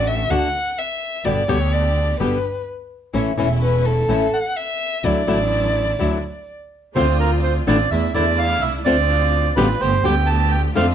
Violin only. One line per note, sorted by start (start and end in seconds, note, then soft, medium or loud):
0.08 0.32 E5 medium
0.31 0.80 F#5 loud
0.78 1.26 E5 medium
1.25 1.51 D5 medium
1.49 1.74 C#5 medium
1.73 2.20 D5 medium
2.20 2.64 B4 medium
3.62 3.87 B4 medium
3.86 4.36 A4 medium
4.34 4.59 F#5 medium
4.57 5.06 E5 loud
5.05 6.48 D5 medium